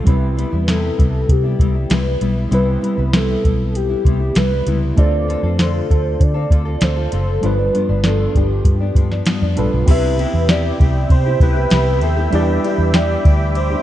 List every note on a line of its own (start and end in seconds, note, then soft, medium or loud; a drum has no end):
0.04 0.43 C2 loud
0.04 0.35 C3 medium
0.04 2.47 G3 medium
0.04 0.36 G3 medium
0.04 0.37 B3 medium
0.04 2.47 C4 soft
0.04 2.48 E4 medium
0.04 0.38 E4 medium
0.04 kick medium
0.04 closed hi-hat medium
0.09 2.49 B4 medium
0.09 0.71 B4 medium
0.37 0.52 C3 soft
0.37 0.52 G3 medium
0.37 0.51 B3 medium
0.37 0.50 E4 medium
0.37 closed hi-hat medium
0.51 0.89 E2 medium
0.51 0.67 G3 soft
0.51 0.67 B3 soft
0.51 0.67 E4 soft
0.67 0.96 C3 medium
0.67 0.97 G3 medium
0.67 0.97 B3 medium
0.67 0.98 E4 medium
0.67 1.33 A4 medium
0.67 snare loud
0.67 closed hi-hat medium
0.97 1.23 C2 medium
0.97 1.44 C3 soft
0.97 1.44 G3 medium
0.97 1.44 B3 medium
0.97 1.43 E4 medium
0.97 kick medium
0.97 closed hi-hat medium
1.29 1.54 C3 medium
1.29 1.95 G4 medium
1.29 kick medium
1.29 closed hi-hat medium
1.44 1.58 G3 soft
1.44 1.59 B3 soft
1.44 1.59 E4 soft
1.59 1.84 C2 medium
1.59 1.75 C3 medium
1.59 1.75 G3 medium
1.59 1.74 B3 medium
1.59 1.73 E4 medium
1.59 kick medium
1.59 closed hi-hat medium
1.75 1.89 G3 soft
1.75 1.89 B3 soft
1.75 1.90 E4 soft
1.90 2.15 C2 medium
1.90 2.05 C3 medium
1.90 2.06 G3 medium
1.90 2.04 B3 medium
1.90 2.03 E4 medium
1.90 2.38 B4 medium
1.90 snare loud
1.90 closed hi-hat medium
2.05 2.20 G3 soft
2.05 2.20 B3 soft
2.05 2.21 E4 soft
2.21 2.46 B1 medium
2.21 2.50 G3 medium
2.21 2.51 B3 medium
2.21 2.51 E4 medium
2.21 closed hi-hat medium
2.49 2.76 C2 loud
2.49 2.80 C3 medium
2.49 4.92 G3 medium
2.49 2.81 G3 medium
2.49 2.82 B3 medium
2.49 4.93 C4 soft
2.49 2.82 E4 medium
2.49 4.94 E4 medium
2.49 closed hi-hat medium
2.54 3.18 B4 medium
2.54 4.94 B4 medium
2.81 2.97 C3 medium
2.81 2.98 G3 medium
2.81 2.97 B3 medium
2.81 2.96 E4 medium
2.81 closed hi-hat medium
2.97 3.35 C2 medium
2.97 3.12 G3 soft
2.97 3.12 B3 soft
2.97 3.13 E4 medium
3.13 3.44 C3 medium
3.13 3.43 G3 medium
3.13 3.44 B3 medium
3.13 3.44 E4 medium
3.13 3.76 A4 medium
3.13 snare loud
3.13 closed hi-hat medium
3.44 3.93 B1 medium
3.44 3.90 G3 soft
3.44 3.89 B3 medium
3.44 3.88 E4 soft
3.44 kick medium
3.44 closed hi-hat medium
3.75 4.39 G4 medium
3.75 closed hi-hat medium
3.90 4.04 G3 soft
3.90 4.05 B3 soft
3.90 4.05 E4 medium
4.05 4.30 C2 medium
4.05 4.20 C3 medium
4.05 4.21 G3 medium
4.05 4.20 B3 medium
4.05 4.19 E4 medium
4.05 kick medium
4.05 closed hi-hat medium
4.20 4.35 G3 soft
4.20 4.35 B3 soft
4.20 4.36 E4 soft
4.35 4.60 C2 medium
4.35 4.51 C3 medium
4.35 4.51 G3 medium
4.35 4.50 B3 medium
4.35 4.49 E4 medium
4.35 4.83 B4 medium
4.35 snare loud
4.35 closed hi-hat medium
4.51 4.65 G3 soft
4.51 4.66 B3 soft
4.51 4.66 E4 medium
4.66 4.91 C#2 medium
4.66 4.97 C3 medium
4.66 4.97 G3 medium
4.66 4.97 B3 medium
4.66 4.98 E4 medium
4.66 closed hi-hat medium
4.95 5.34 D2 medium
4.95 5.26 D3 medium
4.95 7.38 A3 medium
4.95 5.27 C4 medium
4.95 7.38 D4 medium
4.95 7.39 F4 medium
4.95 5.28 F4 medium
4.95 5.29 A4 medium
4.95 5.55 D5 loud
4.95 kick loud
4.95 closed hi-hat medium
5.00 7.40 C5 medium
5.28 5.43 D3 medium
5.28 5.43 C4 medium
5.28 5.43 F4 medium
5.28 5.42 A4 medium
5.28 closed hi-hat medium
5.43 5.80 F2 medium
5.43 5.58 C4 soft
5.43 5.59 F4 soft
5.43 5.58 A4 medium
5.58 5.87 D3 medium
5.58 5.88 C4 medium
5.58 5.89 F4 medium
5.58 5.90 A4 medium
5.58 6.23 C5 medium
5.58 snare loud
5.58 closed hi-hat medium
5.89 6.14 D2 medium
5.89 6.35 D3 soft
5.89 6.35 C4 medium
5.89 6.34 F4 medium
5.89 6.33 A4 medium
5.89 kick medium
5.89 closed hi-hat medium
6.20 6.44 D3 loud
6.20 6.82 D5 loud
6.20 kick medium
6.20 closed hi-hat medium
6.34 6.49 C4 soft
6.34 6.50 F4 soft
6.34 6.50 A4 soft
6.50 6.75 D2 medium
6.50 6.66 D3 medium
6.50 6.66 C4 medium
6.50 6.65 F4 medium
6.50 6.64 A4 medium
6.50 kick medium
6.50 closed hi-hat medium
6.65 6.80 C4 soft
6.65 6.80 F4 soft
6.65 6.81 A4 soft
6.81 7.06 D2 medium
6.81 6.96 D3 medium
6.81 6.97 C4 medium
6.81 6.96 F4 medium
6.81 6.95 A4 medium
6.81 7.45 C5 medium
6.81 snare loud
6.81 closed hi-hat medium
6.96 7.11 C4 soft
6.96 7.12 F4 soft
6.96 7.12 A4 soft
7.11 7.37 F#1 medium
7.11 7.42 D3 medium
7.11 7.43 C4 medium
7.11 7.43 F4 medium
7.11 7.43 A4 medium
7.11 closed hi-hat medium
7.41 7.68 G1 medium
7.41 7.58 G2 medium
7.41 7.58 F3 medium
7.41 9.52 G3 medium
7.41 7.58 B3 medium
7.41 9.53 D4 medium
7.41 7.57 D4 medium
7.41 9.54 F4 medium
7.41 8.04 B4 medium
7.41 closed hi-hat medium
7.46 9.55 B4 medium
7.58 7.73 F3 soft
7.58 7.74 B3 soft
7.58 7.73 D4 soft
7.73 7.89 G2 medium
7.73 7.89 F3 medium
7.73 7.88 B3 medium
7.73 7.88 D4 medium
7.73 closed hi-hat medium
7.89 8.26 G1 medium
7.89 8.03 F3 soft
7.89 8.04 B3 soft
7.89 8.04 D4 soft
8.04 8.33 G2 medium
8.04 8.34 F3 medium
8.04 8.35 B3 medium
8.04 8.35 D4 medium
8.04 8.38 A4 medium
8.04 snare loud
8.04 closed hi-hat medium
8.35 8.59 G1 medium
8.35 8.80 G2 medium
8.35 8.81 F3 medium
8.35 8.80 B3 medium
8.35 8.79 D4 medium
8.35 9.27 G4 medium
8.35 kick medium
8.35 closed hi-hat medium
8.65 8.89 G2 medium
8.65 kick medium
8.65 closed hi-hat medium
8.80 8.95 F3 soft
8.80 8.96 B3 soft
8.80 8.96 D4 soft
8.95 9.20 G2 medium
8.95 9.11 G2 medium
8.95 9.11 F3 medium
8.95 9.11 B3 medium
8.95 9.10 D4 medium
8.95 kick medium
8.95 closed hi-hat medium
9.11 9.26 F3 soft
9.11 9.26 B3 soft
9.11 9.27 D4 soft
9.11 snare soft
9.26 9.42 G2 medium
9.26 9.42 F3 medium
9.26 9.42 B3 medium
9.26 9.41 D4 medium
9.26 snare loud
9.26 closed hi-hat medium
9.42 9.54 F2 medium
9.42 9.57 F3 soft
9.42 9.57 B3 soft
9.42 9.57 D4 medium
9.56 9.69 A#1 medium
9.56 9.87 G2 medium
9.56 9.88 F3 medium
9.56 9.87 G3 medium
9.56 9.87 B3 medium
9.56 9.88 D4 soft
9.56 9.88 D4 medium
9.56 9.88 F4 soft
9.56 9.71 A4 medium
9.56 9.88 B4 medium
9.56 closed hi-hat medium
9.73 9.85 B1 medium
9.86 10.24 C2 loud
9.86 10.17 C3 loud
9.86 10.17 B3 medium
9.86 12.28 C4 medium
9.86 12.28 E4 medium
9.86 10.18 E4 medium
9.86 13.82 G4 medium
9.86 12.29 G4 medium
9.86 10.19 G4 medium
9.86 10.51 B4 medium
9.86 13.82 E5 medium
9.86 12.30 G5 medium
9.86 13.82 B5 medium
9.86 kick loud
9.86 crash loud
9.86 ride medium
9.91 12.30 E5 medium
10.18 10.48 C3 medium
10.18 10.48 B3 medium
10.18 10.49 E4 medium
10.18 10.49 G4 medium
10.18 ride medium
10.33 10.70 E2 medium
10.49 10.78 C3 medium
10.49 10.79 B3 medium
10.49 10.80 E4 medium
10.49 10.80 G4 medium
10.49 11.11 D5 medium
10.49 snare loud
10.49 ride medium
10.80 11.04 C2 medium
10.80 11.25 C3 medium
10.80 11.26 B3 medium
10.80 11.25 E4 medium
10.80 11.24 G4 medium
10.80 kick medium
10.80 ride medium
11.10 11.34 C3 loud
11.10 11.39 C5 medium
11.10 kick loud
11.10 ride medium
11.26 11.41 B3 soft
11.26 11.41 E4 soft
11.26 11.41 G4 medium
11.40 11.65 C2 medium
11.40 11.56 C3 medium
11.40 11.57 B3 medium
11.40 11.56 E4 medium
11.40 11.55 G4 medium
11.40 12.04 B4 loud
11.40 kick medium
11.40 ride medium
11.56 11.71 B3 soft
11.56 11.71 E4 soft
11.56 11.71 G4 medium
11.70 12.02 C2 loud
11.70 12.01 C3 medium
11.70 12.02 B3 medium
11.70 12.02 E4 medium
11.70 12.03 G4 medium
11.70 snare loud
11.70 ride medium
12.01 12.26 D#2 medium
12.01 12.17 C3 medium
12.01 12.18 B3 medium
12.01 12.17 E4 medium
12.01 12.16 G4 medium
12.01 12.35 A4 medium
12.01 ride medium
12.17 12.32 B3 soft
12.17 12.33 E4 medium
12.17 12.32 G4 medium
12.30 12.57 E2 loud
12.30 12.62 E3 medium
12.30 13.82 G3 medium
12.30 12.63 B3 medium
12.30 13.82 D4 medium
12.30 12.63 D4 medium
12.30 13.82 E4 medium
12.30 13.82 G4 medium
12.30 12.64 G4 medium
12.30 12.97 B4 loud
12.30 13.82 D6 medium
12.30 ride medium
12.35 13.82 D5 medium
12.63 12.92 E3 medium
12.63 12.93 B3 medium
12.63 12.93 D4 medium
12.63 12.94 G4 medium
12.63 ride medium
12.78 13.15 E2 medium
12.93 13.23 E3 medium
12.93 13.24 B3 medium
12.93 13.24 D4 loud
12.93 13.25 G4 medium
12.93 13.56 D5 loud
12.93 snare loud
12.93 ride medium
13.24 13.74 D2 medium
13.24 13.70 E3 medium
13.24 13.70 B3 medium
13.24 13.70 D4 medium
13.24 13.69 G4 medium
13.24 kick medium
13.24 ride medium
13.55 13.82 C5 medium
13.55 ride medium
13.70 13.82 B3 soft
13.70 13.82 D4 soft
13.70 13.82 G4 medium